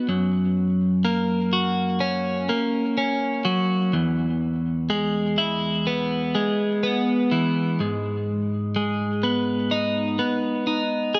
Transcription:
0, 0, Header, 1, 2, 480
1, 0, Start_track
1, 0, Tempo, 961538
1, 42, Time_signature, 4, 2, 24, 8
1, 5589, End_track
2, 0, Start_track
2, 0, Title_t, "Clean electric guitar"
2, 0, Program_c, 0, 27
2, 43, Note_on_c, 0, 42, 59
2, 522, Note_on_c, 0, 58, 56
2, 763, Note_on_c, 0, 66, 61
2, 1001, Note_on_c, 0, 61, 64
2, 1238, Note_off_c, 0, 58, 0
2, 1244, Note_off_c, 0, 42, 0
2, 1244, Note_on_c, 0, 58, 55
2, 1480, Note_off_c, 0, 61, 0
2, 1486, Note_on_c, 0, 61, 59
2, 1721, Note_on_c, 0, 54, 56
2, 1963, Note_off_c, 0, 54, 0
2, 1964, Note_off_c, 0, 58, 0
2, 1964, Note_off_c, 0, 66, 0
2, 1964, Note_on_c, 0, 40, 60
2, 1965, Note_off_c, 0, 61, 0
2, 2446, Note_on_c, 0, 56, 63
2, 2685, Note_on_c, 0, 64, 66
2, 2930, Note_on_c, 0, 59, 61
2, 3163, Note_off_c, 0, 56, 0
2, 3164, Note_off_c, 0, 40, 0
2, 3169, Note_on_c, 0, 56, 57
2, 3405, Note_off_c, 0, 59, 0
2, 3411, Note_on_c, 0, 59, 64
2, 3651, Note_on_c, 0, 52, 57
2, 3885, Note_off_c, 0, 64, 0
2, 3887, Note_off_c, 0, 56, 0
2, 3888, Note_off_c, 0, 52, 0
2, 3888, Note_off_c, 0, 59, 0
2, 3895, Note_on_c, 0, 44, 57
2, 4374, Note_on_c, 0, 56, 51
2, 4610, Note_on_c, 0, 59, 48
2, 4849, Note_on_c, 0, 63, 58
2, 5081, Note_off_c, 0, 59, 0
2, 5087, Note_on_c, 0, 59, 49
2, 5090, Note_off_c, 0, 44, 0
2, 5324, Note_off_c, 0, 63, 0
2, 5326, Note_on_c, 0, 63, 53
2, 5564, Note_on_c, 0, 68, 56
2, 5569, Note_off_c, 0, 56, 0
2, 5589, Note_off_c, 0, 59, 0
2, 5589, Note_off_c, 0, 63, 0
2, 5589, Note_off_c, 0, 68, 0
2, 5589, End_track
0, 0, End_of_file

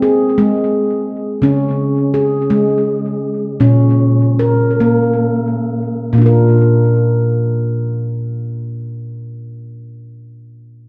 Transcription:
0, 0, Header, 1, 2, 480
1, 0, Start_track
1, 0, Tempo, 708383
1, 959, Time_signature, 6, 3, 24, 8
1, 1929, Tempo, 770218
1, 2889, Tempo, 837989
1, 3369, Tempo, 903614
1, 3849, Tempo, 940439
1, 6277, End_track
2, 0, Start_track
2, 0, Title_t, "Handpan"
2, 0, Program_c, 0, 114
2, 0, Note_on_c, 0, 56, 64
2, 16, Note_on_c, 0, 68, 59
2, 249, Note_off_c, 0, 56, 0
2, 250, Note_off_c, 0, 68, 0
2, 257, Note_on_c, 0, 56, 70
2, 727, Note_off_c, 0, 56, 0
2, 961, Note_on_c, 0, 49, 60
2, 971, Note_on_c, 0, 61, 68
2, 1445, Note_off_c, 0, 61, 0
2, 1450, Note_on_c, 0, 68, 57
2, 1688, Note_off_c, 0, 68, 0
2, 1695, Note_on_c, 0, 56, 66
2, 2167, Note_off_c, 0, 56, 0
2, 2374, Note_off_c, 0, 49, 0
2, 2399, Note_on_c, 0, 46, 63
2, 2402, Note_on_c, 0, 61, 66
2, 2892, Note_off_c, 0, 61, 0
2, 2893, Note_on_c, 0, 70, 54
2, 3127, Note_off_c, 0, 70, 0
2, 3128, Note_on_c, 0, 58, 65
2, 3606, Note_off_c, 0, 58, 0
2, 3828, Note_off_c, 0, 46, 0
2, 3849, Note_on_c, 0, 46, 62
2, 3854, Note_on_c, 0, 58, 48
2, 3874, Note_on_c, 0, 62, 42
2, 3894, Note_on_c, 0, 65, 45
2, 3916, Note_on_c, 0, 70, 48
2, 5840, Note_off_c, 0, 46, 0
2, 5846, Note_off_c, 0, 58, 0
2, 5866, Note_off_c, 0, 62, 0
2, 5885, Note_off_c, 0, 65, 0
2, 5907, Note_off_c, 0, 70, 0
2, 6277, End_track
0, 0, End_of_file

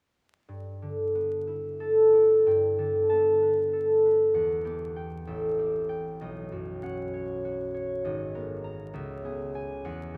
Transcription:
0, 0, Header, 1, 2, 480
1, 0, Start_track
1, 0, Tempo, 653595
1, 364, Time_signature, 6, 3, 24, 8
1, 1801, Tempo, 632244
1, 2761, Tempo, 621762
1, 5161, Tempo, 603015
1, 7825, End_track
2, 0, Start_track
2, 0, Title_t, "Harp"
2, 0, Program_c, 0, 46
2, 356, Note_on_c, 0, 43, 49
2, 604, Note_on_c, 0, 50, 43
2, 845, Note_on_c, 0, 59, 43
2, 1081, Note_on_c, 0, 64, 49
2, 1322, Note_on_c, 0, 69, 61
2, 1555, Note_off_c, 0, 64, 0
2, 1563, Note_on_c, 0, 64, 49
2, 1802, Note_off_c, 0, 43, 0
2, 1809, Note_on_c, 0, 43, 54
2, 1815, Note_on_c, 0, 79, 48
2, 1821, Note_off_c, 0, 50, 0
2, 1823, Note_off_c, 0, 64, 0
2, 2046, Note_off_c, 0, 69, 0
2, 2051, Note_on_c, 0, 50, 42
2, 2055, Note_on_c, 0, 69, 46
2, 2285, Note_off_c, 0, 59, 0
2, 2288, Note_on_c, 0, 81, 62
2, 2294, Note_on_c, 0, 59, 39
2, 2537, Note_on_c, 0, 71, 46
2, 2762, Note_off_c, 0, 69, 0
2, 2771, Note_on_c, 0, 69, 44
2, 3012, Note_off_c, 0, 71, 0
2, 3021, Note_on_c, 0, 71, 43
2, 3242, Note_on_c, 0, 40, 56
2, 3247, Note_on_c, 0, 78, 51
2, 3258, Note_off_c, 0, 81, 0
2, 3261, Note_off_c, 0, 50, 0
2, 3262, Note_off_c, 0, 43, 0
2, 3262, Note_off_c, 0, 69, 0
2, 3470, Note_off_c, 0, 59, 0
2, 3477, Note_on_c, 0, 59, 43
2, 3481, Note_on_c, 0, 67, 48
2, 3713, Note_off_c, 0, 79, 0
2, 3723, Note_on_c, 0, 79, 60
2, 3960, Note_on_c, 0, 33, 55
2, 3965, Note_on_c, 0, 76, 49
2, 3976, Note_off_c, 0, 59, 0
2, 3976, Note_off_c, 0, 78, 0
2, 3977, Note_off_c, 0, 40, 0
2, 3984, Note_off_c, 0, 71, 0
2, 4194, Note_off_c, 0, 67, 0
2, 4203, Note_on_c, 0, 60, 43
2, 4206, Note_on_c, 0, 67, 44
2, 4430, Note_off_c, 0, 79, 0
2, 4439, Note_on_c, 0, 79, 64
2, 4685, Note_on_c, 0, 75, 51
2, 4688, Note_on_c, 0, 35, 59
2, 4701, Note_off_c, 0, 79, 0
2, 4705, Note_off_c, 0, 67, 0
2, 4706, Note_off_c, 0, 33, 0
2, 4706, Note_off_c, 0, 60, 0
2, 4706, Note_off_c, 0, 76, 0
2, 4921, Note_on_c, 0, 42, 45
2, 4927, Note_on_c, 0, 66, 46
2, 5163, Note_on_c, 0, 61, 49
2, 5163, Note_on_c, 0, 78, 70
2, 5406, Note_on_c, 0, 73, 54
2, 5646, Note_off_c, 0, 66, 0
2, 5656, Note_on_c, 0, 66, 50
2, 5882, Note_off_c, 0, 73, 0
2, 5891, Note_on_c, 0, 73, 54
2, 6122, Note_off_c, 0, 75, 0
2, 6132, Note_on_c, 0, 75, 55
2, 6136, Note_on_c, 0, 32, 62
2, 6151, Note_off_c, 0, 42, 0
2, 6151, Note_off_c, 0, 78, 0
2, 6152, Note_off_c, 0, 61, 0
2, 6152, Note_off_c, 0, 73, 0
2, 6154, Note_off_c, 0, 35, 0
2, 6156, Note_off_c, 0, 66, 0
2, 6373, Note_on_c, 0, 59, 50
2, 6375, Note_on_c, 0, 70, 55
2, 6606, Note_on_c, 0, 82, 74
2, 6840, Note_on_c, 0, 37, 62
2, 6848, Note_on_c, 0, 76, 60
2, 6865, Note_off_c, 0, 82, 0
2, 6867, Note_off_c, 0, 75, 0
2, 6868, Note_off_c, 0, 32, 0
2, 6868, Note_off_c, 0, 70, 0
2, 7079, Note_off_c, 0, 59, 0
2, 7086, Note_on_c, 0, 59, 50
2, 7092, Note_on_c, 0, 68, 56
2, 7330, Note_on_c, 0, 80, 77
2, 7566, Note_on_c, 0, 40, 69
2, 7567, Note_on_c, 0, 78, 62
2, 7578, Note_off_c, 0, 37, 0
2, 7582, Note_off_c, 0, 68, 0
2, 7583, Note_off_c, 0, 80, 0
2, 7798, Note_on_c, 0, 47, 51
2, 7825, Note_off_c, 0, 40, 0
2, 7825, Note_off_c, 0, 47, 0
2, 7825, Note_off_c, 0, 59, 0
2, 7825, Note_off_c, 0, 76, 0
2, 7825, Note_off_c, 0, 78, 0
2, 7825, End_track
0, 0, End_of_file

